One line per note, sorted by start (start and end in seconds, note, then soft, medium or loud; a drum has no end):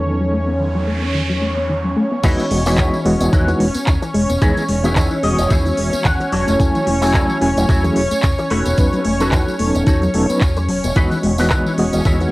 0.00 1.94 E2 medium
0.00 2.20 F#3 medium
0.00 2.20 B3 medium
0.00 2.21 C#4 medium
0.00 2.22 C#4 medium
0.00 2.21 D#4 medium
0.00 2.21 A4 medium
0.00 2.23 C#5 medium
0.05 0.12 D#3 medium
0.05 noise sweep medium
0.21 0.26 F#3 medium
0.33 0.39 A3 medium
0.48 0.51 B3 medium
0.60 0.64 D#3 medium
0.75 0.83 F#3 medium
0.87 0.94 A3 medium
1.02 1.07 B3 medium
1.14 1.21 D#3 medium
1.30 1.35 F#3 loud
1.42 1.48 A3 medium
1.57 1.60 B3 medium
1.69 1.73 D#3 medium
1.84 1.92 F#3 medium
1.96 2.03 A3 loud
2.12 2.17 B3 medium
2.23 2.34 E2 loud
2.23 2.30 D#3 medium
2.23 2.62 E3 medium
2.23 2.62 G#3 medium
2.23 2.63 B3 medium
2.23 10.95 C#4 medium
2.23 2.45 D#4 loud
2.23 2.45 E4 medium
2.23 2.63 F#4 medium
2.23 2.45 G#4 loud
2.23 2.45 B4 loud
2.23 10.95 C#5 medium
2.23 2.63 D#5 medium
2.23 kick loud
2.23 closed hi-hat medium
2.23 crash loud
2.23 tambourine medium
2.39 2.44 E3 loud
2.39 closed hi-hat soft
2.39 tambourine soft
2.51 2.78 E1 loud
2.51 2.57 G#3 medium
2.51 open hi-hat loud
2.66 3.02 E3 medium
2.66 3.02 G#3 medium
2.66 2.69 B3 medium
2.66 3.02 B3 medium
2.66 2.99 D#4 medium
2.66 2.99 E4 medium
2.66 3.03 F#4 medium
2.66 2.99 G#4 medium
2.66 2.99 C#5 loud
2.66 3.03 D#5 medium
2.66 open hi-hat medium
2.66 tambourine medium
2.77 2.89 E2 medium
2.77 2.82 D#3 medium
2.77 kick loud
2.77 clap loud
2.77 closed hi-hat medium
2.77 tambourine medium
2.93 3.01 E3 medium
2.93 tambourine soft
3.05 3.16 E1 medium
3.05 3.44 E3 medium
3.05 3.44 G#3 medium
3.05 3.12 G#3 loud
3.05 3.44 B3 medium
3.05 3.44 F#4 loud
3.05 3.44 D#5 medium
3.05 open hi-hat loud
3.20 3.29 E1 loud
3.20 3.26 B3 medium
3.20 closed hi-hat medium
3.20 tambourine medium
3.32 3.52 E2 medium
3.32 3.39 D#3 medium
3.32 3.48 D#4 medium
3.32 3.48 E4 medium
3.32 3.48 G#4 medium
3.32 3.48 B4 medium
3.32 kick loud
3.32 closed hi-hat medium
3.32 tambourine medium
3.47 3.66 E3 medium
3.47 3.53 E3 loud
3.47 3.66 G#3 medium
3.47 3.66 B3 medium
3.47 3.66 D#4 medium
3.47 3.66 F#4 loud
3.47 closed hi-hat soft
3.47 tambourine soft
3.60 3.70 E1 medium
3.60 3.66 G#3 medium
3.60 muted clean electric guitar stroke soft
3.60 open hi-hat loud
3.74 3.78 B3 medium
3.74 muted fingered electric bass stroke soft
3.74 closed hi-hat medium
3.74 tambourine medium
3.87 3.98 E2 loud
3.87 3.91 D#3 medium
3.87 kick loud
3.87 clap loud
3.87 closed hi-hat medium
3.87 tambourine medium
4.02 4.10 E3 medium
4.02 muted clean electric guitar stroke medium
4.02 closed hi-hat soft
4.02 tambourine soft
4.14 4.25 E1 medium
4.14 4.21 G#3 loud
4.14 muted clean electric guitar stroke soft
4.14 open hi-hat loud
4.29 4.38 E1 medium
4.29 4.35 B3 medium
4.29 closed hi-hat medium
4.29 tambourine medium
4.41 4.52 E2 loud
4.41 4.48 D#3 medium
4.41 4.62 E3 loud
4.41 4.62 G#3 medium
4.41 4.62 B3 medium
4.41 4.63 D#4 loud
4.41 4.62 D#4 medium
4.41 4.63 E4 medium
4.41 4.63 G#4 medium
4.41 4.62 G#4 loud
4.41 4.63 C#5 loud
4.41 kick loud
4.41 closed hi-hat medium
4.41 tambourine medium
4.57 4.62 E3 loud
4.57 closed hi-hat soft
4.57 tambourine soft
4.69 4.96 E1 loud
4.69 4.75 G#3 medium
4.69 open hi-hat loud
4.84 4.95 E3 medium
4.84 4.95 G#3 medium
4.84 4.87 B3 medium
4.84 4.95 B3 medium
4.84 4.95 D#4 medium
4.84 5.18 D#4 medium
4.84 5.18 E4 medium
4.84 4.95 F#4 medium
4.84 5.18 G#4 medium
4.84 5.18 B4 medium
4.84 closed hi-hat medium
4.84 tambourine medium
4.96 5.07 E2 medium
4.96 5.00 D#3 medium
4.96 kick loud
4.96 clap loud
4.96 closed hi-hat medium
4.96 tambourine medium
5.11 5.19 E3 medium
5.11 tambourine soft
5.22 5.34 E1 medium
5.22 6.31 E3 medium
5.22 6.31 G#3 medium
5.22 5.30 G#3 loud
5.22 6.31 B3 medium
5.22 6.32 F#4 medium
5.22 5.49 D#5 medium
5.22 open hi-hat loud
5.38 5.47 E1 loud
5.38 5.44 B3 medium
5.38 closed hi-hat medium
5.38 tambourine medium
5.50 5.71 E2 medium
5.50 5.57 D#3 medium
5.50 5.66 D#4 medium
5.50 5.66 E4 medium
5.50 5.66 G#4 medium
5.50 5.66 C#5 medium
5.50 6.01 E5 medium
5.50 kick loud
5.50 closed hi-hat medium
5.50 tambourine medium
5.66 5.71 E3 loud
5.66 closed hi-hat soft
5.66 tambourine soft
5.78 5.88 E1 medium
5.78 5.84 G#3 medium
5.78 muted clean electric guitar stroke soft
5.78 open hi-hat loud
5.93 5.96 B3 medium
5.93 muted fingered electric bass stroke soft
5.93 closed hi-hat medium
5.93 tambourine medium
6.05 6.16 E2 loud
6.05 6.09 D#3 medium
6.05 6.56 F#5 medium
6.05 kick loud
6.05 clap loud
6.05 closed hi-hat medium
6.05 tambourine medium
6.20 6.28 E3 medium
6.20 muted clean electric guitar stroke medium
6.20 closed hi-hat soft
6.20 tambourine soft
6.32 6.43 E1 loud
6.32 6.39 F#3 loud
6.32 6.87 E4 medium
6.32 6.87 F#4 medium
6.32 6.87 A4 medium
6.32 6.87 C#5 loud
6.32 open hi-hat loud
6.47 6.56 E1 medium
6.47 6.53 A3 medium
6.47 closed hi-hat medium
6.47 tambourine medium
6.59 6.70 E2 medium
6.59 6.66 C#3 medium
6.59 6.98 F#3 medium
6.59 6.99 A3 medium
6.59 6.99 C#4 medium
6.59 6.99 E4 medium
6.59 6.99 G#5 medium
6.59 kick loud
6.59 closed hi-hat medium
6.59 tambourine medium
6.75 6.80 E3 loud
6.75 closed hi-hat soft
6.75 tambourine soft
6.87 7.14 E1 loud
6.87 6.93 F#3 medium
6.87 open hi-hat loud
7.02 7.38 F#3 medium
7.02 7.38 A3 medium
7.02 7.05 A3 medium
7.02 7.39 C#4 medium
7.02 7.36 E4 medium
7.02 7.39 E4 medium
7.02 7.36 F#4 medium
7.02 7.36 A4 medium
7.02 7.36 C#5 medium
7.02 7.39 G#5 loud
7.02 open hi-hat medium
7.02 tambourine medium
7.14 7.25 E2 medium
7.14 7.18 C#3 medium
7.14 kick loud
7.14 clap loud
7.14 tambourine medium
7.29 7.37 E3 medium
7.29 tambourine soft
7.41 7.52 E1 medium
7.41 7.80 F#3 medium
7.41 7.48 F#3 loud
7.41 7.80 A3 medium
7.41 7.80 C#4 medium
7.41 7.81 E4 medium
7.41 7.81 G#5 loud
7.41 open hi-hat loud
7.56 7.65 E1 loud
7.56 7.62 A3 medium
7.56 closed hi-hat medium
7.56 tambourine medium
7.68 7.89 E2 medium
7.68 7.75 C#3 medium
7.68 7.84 E4 medium
7.68 7.84 F#4 medium
7.68 7.84 A4 medium
7.68 7.84 C#5 medium
7.68 kick loud
7.68 closed hi-hat medium
7.68 tambourine medium
7.83 7.89 E3 loud
7.83 8.02 F#3 loud
7.83 8.02 A3 medium
7.83 8.03 C#4 medium
7.83 8.03 E4 medium
7.83 8.03 G#4 loud
7.83 closed hi-hat soft
7.83 tambourine soft
7.96 8.07 E1 medium
7.96 8.02 F#3 medium
7.96 muted clean electric guitar stroke soft
7.96 open hi-hat loud
8.11 8.14 A3 medium
8.11 muted fingered electric bass stroke soft
8.11 closed hi-hat medium
8.11 tambourine medium
8.23 8.34 E2 medium
8.23 8.27 C#3 medium
8.23 kick loud
8.23 clap loud
8.23 closed hi-hat medium
8.23 tambourine medium
8.38 8.46 E3 medium
8.38 muted clean electric guitar stroke medium
8.38 closed hi-hat soft
8.38 tambourine soft
8.50 8.61 E1 medium
8.50 8.57 A3 loud
8.50 9.05 D#4 medium
8.50 9.05 F#4 medium
8.50 9.05 A4 medium
8.50 9.05 B4 loud
8.50 open hi-hat loud
8.65 8.74 E1 medium
8.65 8.71 B3 medium
8.65 closed hi-hat medium
8.65 tambourine medium
8.77 8.88 E2 loud
8.77 8.84 D#3 medium
8.77 8.98 F#3 loud
8.77 8.98 B3 medium
8.77 8.98 C#4 medium
8.77 8.98 D#4 medium
8.77 8.98 B4 loud
8.77 kick loud
8.77 closed hi-hat medium
8.77 tambourine medium
8.93 8.98 F#3 loud
8.93 closed hi-hat soft
8.93 tambourine soft
9.05 9.32 E1 loud
9.05 9.12 A3 medium
9.05 open hi-hat loud
9.20 9.31 F#3 medium
9.20 9.23 B3 medium
9.20 9.31 B3 medium
9.20 9.31 C#4 medium
9.20 9.31 D#4 medium
9.20 9.54 D#4 medium
9.20 9.54 F#4 medium
9.20 9.54 A4 medium
9.20 9.31 A4 medium
9.20 9.54 B4 loud
9.20 closed hi-hat medium
9.20 tambourine medium
9.31 9.43 E2 medium
9.31 9.36 D#3 medium
9.31 kick loud
9.31 clap loud
9.31 closed hi-hat medium
9.31 tambourine medium
9.48 9.55 F#3 medium
9.48 tambourine soft
9.59 9.70 E1 medium
9.59 10.12 F#3 medium
9.59 9.66 A3 loud
9.59 10.12 B3 medium
9.59 10.12 C#4 medium
9.59 10.12 D#4 medium
9.59 10.12 A4 medium
9.59 open hi-hat loud
9.75 9.83 E1 loud
9.75 9.80 B3 medium
9.75 closed hi-hat soft
9.75 tambourine medium
9.87 10.07 E2 medium
9.87 9.93 D#3 medium
9.87 10.02 D#4 medium
9.87 10.02 F#4 medium
9.87 10.02 A4 medium
9.87 10.02 C#5 medium
9.87 kick loud
9.87 closed hi-hat medium
9.87 tambourine medium
10.02 10.07 F#3 loud
10.02 closed hi-hat soft
10.02 tambourine soft
10.14 10.29 E1 loud
10.14 10.26 F#3 medium
10.14 10.24 A3 medium
10.14 10.26 B3 medium
10.14 10.26 C#4 medium
10.14 10.26 D#4 medium
10.14 10.26 A4 loud
10.14 muted clean electric guitar stroke soft
10.14 open hi-hat loud
10.29 10.40 F#3 medium
10.29 10.37 B3 medium
10.29 10.40 B3 medium
10.29 10.41 C#4 medium
10.29 10.41 B4 medium
10.29 closed hi-hat medium
10.29 tambourine medium
10.41 10.69 E2 medium
10.41 10.51 F#4 loud
10.41 kick loud
10.41 clap loud
10.41 closed hi-hat medium
10.41 tambourine medium
10.57 10.62 F#3 medium
10.57 muted clean electric guitar stroke medium
10.57 closed hi-hat soft
10.57 tambourine soft
10.69 10.79 E1 medium
10.69 10.78 F#3 loud
10.69 muted clean electric guitar stroke soft
10.69 open hi-hat loud
10.84 10.92 E1 loud
10.84 10.87 B3 medium
10.84 closed hi-hat soft
10.84 tambourine medium
10.96 11.07 E2 loud
10.96 11.02 D#3 medium
10.96 11.35 E3 medium
10.96 11.35 G#3 medium
10.96 11.35 B3 medium
10.96 12.31 C#4 medium
10.96 11.17 D#4 loud
10.96 11.17 E4 medium
10.96 11.35 F#4 medium
10.96 11.17 G#4 loud
10.96 11.17 B4 loud
10.96 12.31 C#5 medium
10.96 11.35 D#5 medium
10.96 kick loud
10.96 closed hi-hat medium
10.96 tambourine medium
11.11 11.16 E3 loud
11.11 closed hi-hat soft
11.11 tambourine soft
11.23 11.51 E1 loud
11.23 11.30 G#3 medium
11.23 open hi-hat loud
11.38 11.75 E3 medium
11.38 11.75 G#3 medium
11.38 11.42 B3 medium
11.38 11.75 B3 medium
11.38 11.72 D#4 medium
11.38 11.72 E4 medium
11.38 11.76 F#4 medium
11.38 11.72 G#4 medium
11.38 11.72 B4 loud
11.38 11.75 D#5 medium
11.38 open hi-hat medium
11.38 tambourine medium
11.50 11.61 E2 medium
11.50 11.54 D#3 medium
11.50 kick loud
11.50 clap loud
11.50 tambourine medium
11.66 11.73 E3 medium
11.66 tambourine soft
11.78 11.88 E1 medium
11.78 12.17 E3 medium
11.78 11.84 G#3 loud
11.78 12.17 G#3 medium
11.78 12.17 B3 medium
11.78 12.17 F#4 loud
11.78 12.17 D#5 medium
11.78 open hi-hat loud
11.93 12.01 E1 loud
11.93 11.98 B3 medium
11.93 closed hi-hat medium
11.93 tambourine medium
12.05 12.25 E2 loud
12.05 12.12 D#3 medium
12.05 12.21 D#4 medium
12.05 12.21 E4 medium
12.05 12.21 G#4 medium
12.05 12.21 B4 medium
12.05 kick loud
12.05 closed hi-hat medium
12.05 tambourine medium
12.20 12.25 E3 loud
12.20 12.31 E3 medium
12.20 12.31 G#3 medium
12.20 12.31 B3 medium
12.20 12.31 D#4 medium
12.20 12.31 F#4 loud
12.20 closed hi-hat soft
12.20 tambourine soft